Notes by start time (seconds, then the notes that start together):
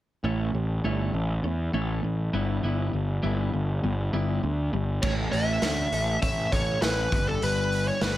0.24 A1 A3 C#4 E4
0.53 A1 A3 C#4
0.84 G1 A3 C#4 E4
1.13 A1 A3 C#4
1.43 E2 A3 C#4
1.73 A1 A3 C#4 E4
2.03 A1 A3 C#4
2.33 G1 G3 B3 E4
2.63 G1 G3 B3 E4
2.93 G1 G3 B3
3.23 G1 G3 B3 E4
3.53 G1 G3 B3
3.83 G1 G3 B3
4.13 G1 G3 B3 E4
4.43 D2 G3 B3
4.73 G1 G3 B3
5.03 A1 A3 C#5, kick, crash
5.32 A1 E5, open hi-hat
5.62 D2 C#4, snare, open hi-hat
5.92 A1 A4, open hi-hat
6.22 A1 C#5 E5, kick, open hi-hat
6.52 A1 A4 C#5, kick, open hi-hat
6.82 A1 E4 B4, snare, open hi-hat
7.12 G1 G3, kick, open hi-hat
7.28 A4
7.42 G1 G3 B4, open hi-hat
7.72 open hi-hat
7.88 C#5
8.01 G1 G3 B4, snare, open hi-hat